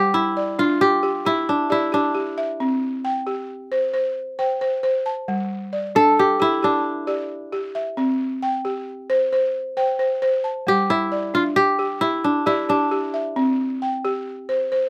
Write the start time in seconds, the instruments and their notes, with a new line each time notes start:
Already playing: balafon G3 A5, kora G4
0.14 kora E4
0.37 balafon D5
0.59 balafon D4, kora F4
0.81 kora G4
1.03 balafon G4
1.25 kora E4, balafon G4
1.49 kora D4
1.70 kora E4, balafon G4 D5
1.92 kora D4, balafon G4
2.15 balafon G4
2.38 balafon E5
2.60 balafon C4
3.05 balafon G5
3.27 balafon G4
3.72 balafon C5
3.94 balafon C5
4.39 balafon C5 G5
4.61 balafon C5
4.83 balafon C5
5.06 balafon A5
5.28 balafon G3
5.73 balafon D5
5.95 balafon D4, kora A4
6.19 kora G4
6.40 kora E4, balafon G4
6.63 kora D4, balafon G4
7.07 balafon G4 D5
7.53 balafon G4
7.75 balafon E5
7.97 balafon C4
8.43 balafon G5
8.65 balafon G4
9.10 balafon C5
9.32 balafon C5
9.77 balafon C5 G5
9.99 balafon C5
10.22 balafon C5
10.44 balafon A5
10.67 balafon G3, kora G4
10.90 kora E4
11.12 balafon D5
11.34 balafon D4, kora F4
11.56 kora G4
11.79 balafon G4
12.01 kora E4, balafon G4
12.24 kora D4
12.46 kora E4, balafon G4 D5
12.69 kora D4, balafon G4
12.91 balafon G4
13.14 balafon E5
13.36 balafon C4
13.82 balafon G5
14.05 balafon G4
14.49 balafon C5
14.72 balafon C5